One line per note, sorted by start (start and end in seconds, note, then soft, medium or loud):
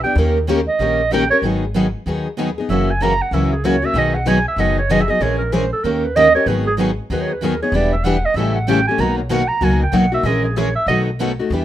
0.03 0.17 B3 soft
0.03 0.17 D4 medium
0.03 0.16 G4 medium
0.03 0.15 G5 loud
0.15 0.66 D#2 loud
0.15 0.37 D#3 medium
0.15 0.37 A#3 medium
0.15 0.37 C#4 medium
0.15 0.37 G4 medium
0.15 0.38 A#4 medium
0.48 0.59 D#3 medium
0.48 0.60 A#3 loud
0.48 0.60 C#4 medium
0.48 0.60 G4 loud
0.48 0.60 A#4 loud
0.68 1.14 D#5 medium
0.79 1.30 A#1 medium
0.79 1.01 D#3 medium
0.79 1.00 A#3 medium
0.79 1.01 C#4 medium
0.79 1.01 G4 medium
0.79 1.01 A#4 medium
1.12 1.23 D#3 medium
1.12 1.23 A#3 loud
1.12 1.23 C#4 medium
1.12 1.24 G4 loud
1.12 1.23 A#4 loud
1.12 1.30 G5 loud
1.30 1.44 C#4 soft
1.30 1.43 G4 medium
1.30 1.43 A#4 medium
1.30 1.38 C#5 loud
1.42 1.93 G#1 medium
1.42 1.64 D#3 medium
1.42 1.64 F#3 medium
1.42 1.64 B3 medium
1.42 1.64 D#4 medium
1.46 1.65 G#4 medium
1.76 1.86 D#3 medium
1.76 1.86 F#3 medium
1.76 1.86 B3 medium
1.76 1.86 D#4 loud
1.76 1.87 G#4 medium
2.06 2.56 D#2 medium
2.06 2.26 D#3 medium
2.06 2.27 F#3 medium
2.06 2.27 B3 medium
2.06 2.27 D#4 medium
2.06 2.27 G#4 medium
2.38 2.49 D#3 medium
2.38 2.49 F#3 medium
2.38 2.49 B3 medium
2.38 2.49 D#4 medium
2.38 2.49 G#4 medium
2.58 2.70 B3 soft
2.58 2.70 D#4 soft
2.58 2.69 G#4 medium
2.69 3.19 F#1 medium
2.69 2.90 C#3 medium
2.69 2.90 E3 medium
2.69 2.89 F#3 medium
2.69 2.91 A#3 medium
2.69 2.91 C#4 medium
2.69 2.90 E4 medium
2.69 2.90 F#4 medium
2.69 2.90 A#4 medium
2.69 2.92 E5 medium
2.90 3.04 G#5 loud
3.00 3.12 C#3 medium
3.00 3.12 E3 medium
3.00 3.11 F#3 medium
3.00 3.13 A#3 loud
3.00 3.13 C#4 medium
3.00 3.12 E4 medium
3.00 3.13 F#4 medium
3.00 3.12 A#4 medium
3.00 3.23 A#5 loud
3.22 3.35 F#5 medium
3.31 3.82 C#2 medium
3.31 3.52 C#3 medium
3.31 3.53 E3 medium
3.31 3.53 F#3 medium
3.31 3.53 A#3 medium
3.31 3.53 C#4 medium
3.31 3.53 E4 medium
3.31 3.53 F#4 medium
3.31 3.53 A#4 medium
3.31 3.52 E5 medium
3.53 3.67 G#4 medium
3.64 3.75 C#3 medium
3.64 3.75 E3 medium
3.64 3.75 F#3 medium
3.64 3.75 A#3 medium
3.64 3.75 C#4 medium
3.64 3.75 E4 medium
3.64 3.75 F#4 loud
3.64 3.75 A#4 medium
3.64 3.87 C#5 medium
3.82 3.96 A#3 soft
3.82 3.95 C#4 soft
3.82 3.94 F#4 medium
3.82 4.00 E5 loud
3.94 4.45 B1 medium
3.94 4.15 B2 medium
3.94 4.15 D#3 medium
3.94 4.15 F#3 medium
3.94 4.16 B3 medium
3.94 4.16 D#4 medium
3.94 4.16 G#4 medium
3.98 4.16 D#5 medium
4.14 4.29 F#5 loud
4.26 4.37 B2 medium
4.26 4.37 D#3 medium
4.26 4.37 F#3 medium
4.26 4.37 B3 medium
4.26 4.38 D#4 loud
4.26 4.38 G#4 medium
4.26 4.46 G#5 loud
4.48 4.61 E5 loud
4.56 5.08 F#1 medium
4.56 4.78 B2 medium
4.56 4.79 D#3 medium
4.56 4.78 F#3 medium
4.56 4.79 B3 medium
4.56 4.79 D#4 medium
4.56 4.79 G#4 medium
4.56 4.78 D#5 medium
4.78 4.93 C#5 medium
4.90 5.01 B2 medium
4.90 5.01 D#3 medium
4.90 5.01 F#3 medium
4.90 5.01 B3 medium
4.90 5.01 D#4 loud
4.90 5.01 G#4 loud
4.90 5.02 D#5 medium
5.01 5.11 E5 medium
5.08 5.20 F#3 soft
5.08 5.21 B3 soft
5.08 5.21 D#4 soft
5.08 5.20 G#4 medium
5.08 5.24 D#5 medium
5.20 5.71 A#1 medium
5.20 5.41 E3 medium
5.20 5.41 G#3 medium
5.20 5.41 C#4 medium
5.20 5.42 G#4 medium
5.20 5.42 A#4 medium
5.20 5.38 C#5 medium
5.38 5.54 A#4 medium
5.52 5.63 E3 medium
5.52 5.64 G#3 medium
5.52 5.64 C#4 medium
5.52 5.64 G#4 medium
5.52 5.64 A#4 medium
5.52 5.72 C5 loud
5.73 5.85 A4 medium
5.84 6.35 D#2 medium
5.84 6.05 D#3 medium
5.84 6.05 A#3 medium
5.84 6.05 C#4 medium
5.84 6.05 G4 medium
5.84 6.06 A#4 medium
5.84 6.05 A#4 medium
6.04 6.18 B4 medium
6.16 6.27 D#3 medium
6.16 6.27 A#3 loud
6.16 6.27 C#4 medium
6.16 6.27 G4 loud
6.16 6.27 A#4 loud
6.16 6.34 D#5 loud
6.35 6.47 C#4 soft
6.35 6.47 G4 soft
6.35 6.47 A#4 medium
6.35 6.49 C#5 loud
6.46 6.97 G#1 medium
6.46 6.68 D#3 medium
6.46 6.68 F#3 medium
6.46 6.68 B3 medium
6.46 6.68 D#4 medium
6.46 6.69 G#4 medium
6.46 6.66 B4 medium
6.67 6.74 G#4 medium
6.79 6.90 D#3 medium
6.79 6.90 F#3 medium
6.79 6.90 B3 medium
6.79 6.90 D#4 medium
6.79 6.91 G#4 medium
7.10 7.60 D#2 medium
7.10 7.31 D#3 medium
7.10 7.31 F#3 medium
7.10 7.31 B3 medium
7.10 7.31 D#4 medium
7.10 7.32 G#4 medium
7.10 7.23 B4 medium
7.21 7.34 C#5 medium
7.33 7.45 B4 medium
7.43 7.53 D#3 medium
7.43 7.53 F#3 medium
7.43 7.54 B3 medium
7.43 7.54 D#4 loud
7.43 7.54 G#4 loud
7.43 7.61 A#4 medium
7.62 7.74 B3 soft
7.62 7.74 D#4 medium
7.62 7.74 G#4 medium
7.62 7.77 C#5 medium
7.72 8.23 E1 medium
7.72 7.94 E3 medium
7.72 7.94 G3 medium
7.72 7.94 B3 medium
7.72 7.94 D4 medium
7.72 7.94 E4 medium
7.72 7.94 G4 medium
7.72 7.94 B4 medium
7.72 7.94 D5 medium
7.93 8.06 E5 medium
8.04 8.16 E3 medium
8.04 8.16 G3 medium
8.04 8.16 B3 medium
8.04 8.16 D4 loud
8.04 8.16 E4 medium
8.04 8.17 G4 loud
8.04 8.16 B4 medium
8.04 8.27 F#5 loud
8.25 8.38 D#5 medium
8.34 8.85 A1 medium
8.34 8.57 C#3 medium
8.34 8.57 E3 medium
8.34 8.56 G3 medium
8.34 8.57 A3 medium
8.34 8.57 E4 medium
8.34 8.57 A4 medium
8.34 8.54 E5 medium
8.39 8.57 C#4 medium
8.39 8.58 G4 medium
8.55 8.70 F#5 medium
8.67 8.79 C#3 loud
8.67 8.79 E3 medium
8.67 8.78 G3 medium
8.67 8.79 A3 medium
8.67 8.79 C#4 loud
8.67 8.79 E4 medium
8.67 8.79 G4 loud
8.67 8.79 A4 medium
8.67 8.87 G5 loud
8.87 9.00 A3 medium
8.87 9.01 C#4 medium
8.87 9.00 G4 medium
8.87 9.02 G#5 loud
8.98 9.49 B1 medium
8.98 9.20 B2 medium
8.98 9.19 D#3 medium
8.98 9.20 F#3 medium
8.98 9.20 A#3 medium
8.98 9.19 B3 medium
8.98 9.20 D#4 medium
8.98 9.21 F#4 medium
8.98 9.19 A#4 medium
8.98 9.17 A#5 medium
9.18 9.34 C#5 medium
9.29 9.41 B2 medium
9.29 9.41 D#3 medium
9.29 9.42 F#3 medium
9.29 9.42 A#3 medium
9.29 9.41 B3 medium
9.29 9.42 D#4 loud
9.29 9.42 F#4 loud
9.29 9.42 A#4 loud
9.29 9.49 F#5 loud
9.48 9.65 A#5 loud
9.61 9.88 C#2 medium
9.61 9.82 B2 medium
9.61 9.82 D#3 medium
9.61 9.82 F#3 medium
9.61 9.82 A#3 medium
9.61 9.82 B3 medium
9.61 9.82 D#4 medium
9.61 9.82 F#4 medium
9.61 9.82 A#4 medium
9.61 9.82 G#5 medium
9.83 9.99 G5 medium
9.92 10.20 B1 medium
9.92 10.04 B2 loud
9.92 10.04 D#3 medium
9.92 10.04 F#3 loud
9.92 10.04 A#3 medium
9.92 10.04 B3 medium
9.92 10.05 D#4 loud
9.92 10.05 F#4 loud
9.92 10.05 A#4 medium
9.97 10.13 F#5 loud
10.12 10.25 A#3 soft
10.12 10.24 D#4 medium
10.12 10.24 F#4 medium
10.12 10.27 E5 loud
10.23 10.74 A#1 medium
10.23 10.45 E3 medium
10.23 10.46 G#3 medium
10.23 10.46 C#4 medium
10.23 10.46 G#4 medium
10.23 10.46 A#4 medium
10.23 10.44 D#5 medium
10.44 10.59 G#4 medium
10.56 10.67 E3 medium
10.56 10.68 G#3 medium
10.56 10.68 C#4 medium
10.56 10.68 G#4 medium
10.56 10.68 A#4 medium
10.56 10.75 C#5 medium
10.76 10.87 E5 loud
10.87 11.38 B1 medium
10.87 11.08 B2 medium
10.87 11.08 D#3 medium
10.87 11.08 F#3 medium
10.87 11.09 A3 medium
10.87 11.09 B3 medium
10.87 11.09 D#4 medium
10.87 11.09 F#4 medium
10.87 11.09 A4 medium
10.87 10.99 D#5 medium
11.19 11.31 B2 medium
11.19 11.30 D#3 medium
11.19 11.31 F#3 medium
11.19 11.31 A3 medium
11.19 11.31 B3 medium
11.19 11.31 D#4 loud
11.19 11.31 F#4 loud
11.19 11.31 A4 loud
11.39 11.52 A3 soft
11.39 11.51 D#4 medium
11.39 11.51 F#4 medium
11.50 11.65 E2 medium
11.50 11.65 E3 medium
11.50 11.65 G3 medium
11.50 11.65 B3 medium
11.50 11.65 D4 medium
11.50 11.65 E4 medium
11.50 11.65 G4 medium
11.50 11.65 B4 medium